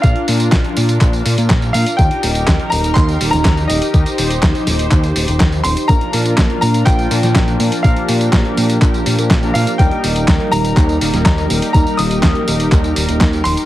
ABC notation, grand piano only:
X:1
M:4/4
L:1/16
Q:1/4=123
K:Eb
V:1 name="Grand piano"
f8 z6 f2 | g6 b2 c'3 b3 e2- | e6 z8 c'2 | b6 b2 g8 |
f8 z6 f2 | g6 b4 z2 b4 | b2 e'6 z6 c'2 |]